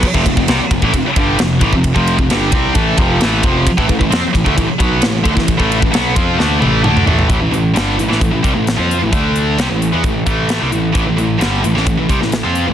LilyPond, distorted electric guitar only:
\new Staff \with { instrumentName = "Distorted electric guitar" } { \clef bass \time 4/4 \key a \minor \tempo 4 = 132 r16 <f, c>16 <f, c>16 <f, c>16 <c g>16 r16 <f, c>16 <a, e>16 <f, c>16 r16 <g, d g>8 <f, c>8 <a, e>16 <f, c>16~ | <f, c>16 <f, c f>8 <f, c>16 <g, d g>8 <c g c'>8 <a, e a>8 <f, c f>8 <a, e a>8 <f, c f>8 | r16 <a, e>16 <a, e>16 <a, e>16 <f c'>16 r16 <a, e>16 <d a>16 <a, e>16 r16 <b, fis b>8 <a, e>8 <d a>16 <a, e>16~ | <a, e>16 <a, e a>8 <a, e>16 <b, fis b>8 <f c' f'>8 <d a d'>8 <a, e a>8 <d a d'>8 <a, e a>8 |
<a, e>16 <a, e>16 <a, e>8 <g, d g>8 <a, e>16 <a, e>16 <a, e>16 <a, e>16 <c g>16 <a, e>8 <f c' f'>8 <a, e>16 | <d a d'>4 <c g>16 <a, e>8 <e b>16 <a, e>8 <a, e a>8. <c g>16 <a, e>8 | <a, e>16 <a, e>16 <a, e>8 <g, d g>8 <a, e>16 <a, e>16 <a, e>16 <a, e>16 <c g>16 <a, e>8 <f c' f'>8 <a, e>16 | }